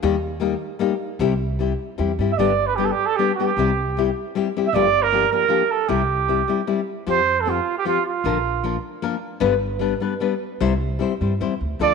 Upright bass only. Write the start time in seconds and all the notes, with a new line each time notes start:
0.03 D#2
1.19 C2
1.99 E2
2.18 G2
2.38 G1
3.56 C2
4.73 G1
5.89 C2
7.07 F2
8.24 A#1
9.41 G1
10.60 C2
11.21 G2
11.40 E2
11.61 D2
11.79 D2